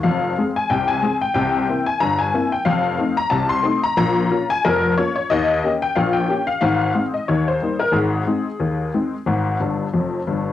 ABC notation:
X:1
M:2/4
L:1/16
Q:"Swing 16ths" 1/4=91
K:Ab
V:1 name="Honky-tonk piano"
f3 a g a2 g | g3 a b a2 g | f3 b =a c'2 b | b3 a B2 d d |
e3 g f g2 f | f3 e d c2 B | A8- | A6 z2 |]
V:2 name="Honky-tonk piano" clef=bass
[F,,,F,,]2 [A,CA]2 [C,,C,]2 [A,CA]2 | [C,,C,]2 [B,C=E]2 [G,,,G,,]2 [B,CE]2 | [F,,,F,,]2 [=A,CE]2 [C,,C,]2 [A,CE]2 | [B,,,B,,]2 [B,DF]2 [F,,,F,,]2 [B,DF]2 |
[E,,E,]2 [B,DG]2 [B,,,B,,]2 [B,DG]2 | [A,,,A,,]2 [A,CE]2 [E,,E,]2 [G,B,E]2 | [A,,,A,,]2 [A,CE]2 [E,,E,]2 [A,CE]2 | [A,,,A,,]2 [G,,,G,,]2 [F,,,F,,]2 [G,,,G,,]2 |]